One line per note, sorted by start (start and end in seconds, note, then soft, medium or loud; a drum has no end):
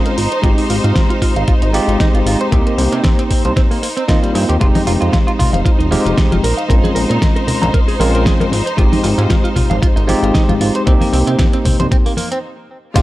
0.00 0.16 G#3 medium
0.00 0.16 C4 medium
0.00 0.16 C#4 medium
0.00 4.59 D#4 medium
0.00 0.16 F4 medium
0.00 4.59 C5 medium
0.06 0.10 A#4 medium
0.06 closed hi-hat soft
0.18 0.28 G#1 medium
0.18 0.28 F4 medium
0.18 open hi-hat loud
0.32 0.38 C5 medium
0.32 closed hi-hat soft
0.42 0.54 G#1 medium
0.42 1.70 G#3 medium
0.42 1.71 C4 medium
0.42 1.71 D#4 medium
0.42 0.48 F4 medium
0.42 1.72 G4 medium
0.42 kick loud
0.42 closed hi-hat medium
0.58 0.64 D#4 medium
0.58 open hi-hat medium
0.70 0.80 G#1 loud
0.70 0.74 F4 medium
0.70 open hi-hat loud
0.84 0.92 G#2 medium
0.84 0.93 F4 medium
0.84 closed hi-hat soft
0.95 1.00 F4 medium
0.95 kick loud
0.95 snare loud
0.95 closed hi-hat medium
1.10 1.14 F4 medium
1.10 closed hi-hat soft
1.22 1.33 F4 medium
1.22 kick medium
1.22 open hi-hat loud
1.36 1.44 G#1 loud
1.36 1.42 F5 medium
1.36 closed hi-hat soft
1.48 1.52 F4 medium
1.48 kick loud
1.48 closed hi-hat medium
1.62 1.80 G#1 medium
1.62 1.68 D#4 medium
1.62 closed hi-hat soft
1.73 2.49 G#3 medium
1.73 2.49 C4 medium
1.73 2.50 D#4 medium
1.73 1.85 F4 medium
1.73 2.50 G4 loud
1.73 open hi-hat loud
1.88 1.96 G#1 medium
1.88 1.97 F4 medium
1.88 closed hi-hat soft
2.00 2.07 D#4 loud
2.00 kick loud
2.00 snare loud
2.00 closed hi-hat medium
2.14 2.22 G#1 medium
2.14 2.18 F4 medium
2.14 closed hi-hat soft
2.25 2.36 G#1 medium
2.25 2.37 F4 medium
2.25 open hi-hat loud
2.41 2.47 C5 medium
2.41 closed hi-hat soft
2.51 2.62 C2 loud
2.51 3.79 A#3 medium
2.51 3.80 C4 medium
2.51 2.57 C4 medium
2.51 3.80 D#4 medium
2.51 3.80 G4 medium
2.51 kick loud
2.51 closed hi-hat medium
2.67 2.73 A#3 medium
2.67 closed hi-hat soft
2.78 2.88 C2 loud
2.78 2.83 C4 medium
2.78 open hi-hat loud
2.92 3.01 C3 medium
2.92 3.02 C4 medium
2.92 closed hi-hat soft
3.04 3.09 C4 medium
3.04 kick loud
3.04 snare loud
3.04 closed hi-hat medium
3.19 3.22 C4 medium
3.19 closed hi-hat soft
3.31 3.41 C4 medium
3.31 kick medium
3.31 open hi-hat loud
3.45 3.53 C2 loud
3.45 3.51 C5 medium
3.45 closed hi-hat soft
3.56 3.61 C4 medium
3.56 kick loud
3.56 snare medium
3.56 closed hi-hat medium
3.71 3.77 A#3 medium
3.71 open hi-hat medium
3.83 3.87 A#3 medium
3.83 open hi-hat loud
3.97 4.03 C4 medium
3.97 closed hi-hat soft
4.08 4.58 A#3 medium
4.08 4.58 C4 medium
4.08 4.19 D#4 medium
4.08 4.58 D#4 medium
4.08 4.58 F4 medium
4.08 kick loud
4.08 snare loud
4.08 closed hi-hat medium
4.23 4.32 G3 medium
4.23 closed hi-hat soft
4.35 4.45 G2 medium
4.35 4.46 C4 medium
4.35 open hi-hat loud
4.49 4.58 D#2 medium
4.49 4.55 G4 medium
4.49 closed hi-hat soft
4.60 4.71 F1 loud
4.60 5.88 G#3 medium
4.60 5.88 C4 medium
4.60 12.43 D#4 medium
4.60 5.89 D#4 medium
4.60 4.65 F4 medium
4.60 5.89 G4 medium
4.60 12.43 C5 medium
4.60 kick loud
4.60 closed hi-hat medium
4.75 4.81 D#4 medium
4.75 open hi-hat medium
4.75 high conga loud
4.87 4.97 F1 loud
4.87 4.91 F4 medium
4.87 open hi-hat loud
5.01 5.10 F2 medium
5.01 5.10 F4 medium
5.01 closed hi-hat soft
5.12 5.17 F4 medium
5.12 kick loud
5.12 snare loud
5.12 closed hi-hat medium
5.12 high conga medium
5.27 5.31 F4 medium
5.27 closed hi-hat soft
5.39 5.50 F4 medium
5.39 kick medium
5.39 open hi-hat loud
5.39 low conga medium
5.53 5.62 F1 loud
5.53 5.59 F5 medium
5.53 closed hi-hat soft
5.53 high conga medium
5.65 5.69 F4 medium
5.65 kick loud
5.65 closed hi-hat medium
5.79 5.97 D#1 medium
5.79 5.85 D#4 medium
5.79 closed hi-hat soft
5.91 6.42 G#3 medium
5.91 6.42 C4 medium
5.91 6.42 D#4 medium
5.91 6.02 F4 medium
5.91 6.43 G4 medium
5.91 open hi-hat loud
5.91 high conga medium
6.06 6.14 F1 medium
6.06 6.15 F4 medium
6.06 closed hi-hat soft
6.17 6.25 D#4 loud
6.17 kick loud
6.17 snare loud
6.17 closed hi-hat medium
6.32 6.40 F1 medium
6.32 6.36 F4 medium
6.32 closed hi-hat soft
6.32 high conga loud
6.44 6.54 A#1 medium
6.44 6.54 A#4 medium
6.44 open hi-hat loud
6.57 6.64 F5 medium
6.57 closed hi-hat soft
6.68 6.80 A#1 loud
6.68 7.97 G#3 medium
6.68 7.97 C4 medium
6.68 7.97 C#4 medium
6.68 7.98 F4 medium
6.68 6.74 A#4 medium
6.68 kick loud
6.68 closed hi-hat medium
6.84 6.90 G#4 medium
6.84 closed hi-hat soft
6.84 high conga medium
6.95 7.06 A#1 medium
6.95 7.00 A#4 medium
6.95 open hi-hat loud
7.09 7.18 A#2 medium
7.09 7.19 A#4 medium
7.09 closed hi-hat soft
7.21 7.26 A#4 medium
7.21 kick loud
7.21 snare loud
7.21 closed hi-hat medium
7.21 high conga medium
7.36 7.40 A#4 medium
7.36 closed hi-hat soft
7.47 7.58 A#4 medium
7.47 open hi-hat medium
7.47 low conga medium
7.62 7.71 A#1 loud
7.62 7.68 A#5 medium
7.62 closed hi-hat soft
7.62 high conga medium
7.74 7.78 A#4 medium
7.74 kick loud
7.74 closed hi-hat medium
7.88 7.94 G#4 medium
7.88 open hi-hat medium
8.00 8.34 A#1 loud
8.00 8.51 G#3 medium
8.00 8.51 C4 medium
8.00 8.51 C#4 medium
8.00 8.51 F4 medium
8.00 8.11 A#4 medium
8.00 open hi-hat medium
8.00 high conga medium
8.14 8.23 A#4 medium
8.14 closed hi-hat soft
8.25 8.33 G#4 loud
8.25 kick loud
8.25 snare loud
8.25 closed hi-hat medium
8.40 8.44 A#4 medium
8.40 closed hi-hat soft
8.40 high conga loud
8.52 8.62 G#1 medium
8.52 8.63 F4 medium
8.52 open hi-hat loud
8.66 8.72 C5 medium
8.66 closed hi-hat soft
8.77 8.88 G#1 medium
8.77 10.05 G#3 medium
8.77 10.06 C4 medium
8.77 10.06 D#4 medium
8.77 8.82 F4 medium
8.77 10.06 G4 medium
8.77 kick loud
8.77 closed hi-hat medium
8.92 8.99 D#4 medium
8.92 open hi-hat medium
8.92 high conga medium
9.04 9.14 G#1 loud
9.04 9.08 F4 medium
9.04 open hi-hat loud
9.18 9.27 G#2 medium
9.18 9.27 F4 medium
9.18 closed hi-hat soft
9.30 9.35 F4 medium
9.30 kick loud
9.30 snare loud
9.30 closed hi-hat medium
9.30 high conga medium
9.44 9.48 F4 medium
9.44 closed hi-hat soft
9.56 9.67 F4 medium
9.56 kick medium
9.56 open hi-hat medium
9.56 low conga medium
9.70 9.79 G#1 loud
9.70 9.76 F5 medium
9.70 closed hi-hat soft
9.70 high conga medium
9.82 9.94 G#1 soft
9.82 9.87 F4 medium
9.82 kick loud
9.82 closed hi-hat medium
9.96 10.15 G#1 medium
9.96 10.03 D#4 medium
9.96 closed hi-hat soft
10.07 10.84 G#3 medium
10.07 10.84 C4 medium
10.07 10.84 D#4 medium
10.07 10.19 F4 medium
10.07 10.84 G4 loud
10.07 open hi-hat medium
10.07 high conga medium
10.22 10.31 G#1 loud
10.22 10.32 F4 medium
10.22 closed hi-hat soft
10.34 10.42 D#4 loud
10.34 kick loud
10.34 snare loud
10.34 closed hi-hat medium
10.49 10.57 G#1 medium
10.49 10.53 F4 medium
10.49 closed hi-hat soft
10.49 high conga medium
10.60 10.71 G#1 medium
10.60 10.72 F4 medium
10.60 open hi-hat loud
10.75 10.81 C5 medium
10.75 closed hi-hat soft
10.86 10.97 C2 loud
10.86 12.14 A#3 medium
10.86 12.14 C4 medium
10.86 10.91 C4 medium
10.86 12.15 D#4 medium
10.86 12.15 G4 medium
10.86 kick loud
10.86 closed hi-hat medium
11.01 11.07 A#3 medium
11.01 open hi-hat medium
11.01 high conga medium
11.13 11.23 C2 loud
11.13 11.17 C4 loud
11.13 open hi-hat loud
11.27 11.36 C3 medium
11.27 11.36 C4 medium
11.27 closed hi-hat soft
11.39 11.44 C4 medium
11.39 kick loud
11.39 snare loud
11.39 closed hi-hat medium
11.39 high conga medium
11.53 11.57 C4 medium
11.53 closed hi-hat soft
11.65 11.76 C4 medium
11.65 kick medium
11.65 open hi-hat medium
11.65 low conga medium
11.80 11.88 C2 loud
11.80 11.86 C5 medium
11.80 closed hi-hat soft
11.80 high conga medium
11.91 11.96 C4 medium
11.91 kick loud
11.91 closed hi-hat medium
12.06 12.12 A#3 medium
12.06 open hi-hat medium
12.17 12.28 A#3 medium
12.17 open hi-hat loud
12.17 high conga medium
12.32 12.38 C4 loud
12.32 closed hi-hat soft
12.94 13.02 F1 loud
12.94 13.02 G#3 medium
12.94 13.02 C4 medium
12.94 13.02 D#4 medium
12.94 13.02 F4 medium
12.94 13.00 F4 medium
12.94 13.02 G4 medium
12.94 13.02 F5 medium
12.94 kick loud
12.94 closed hi-hat medium
12.94 crash loud
12.94 shaker medium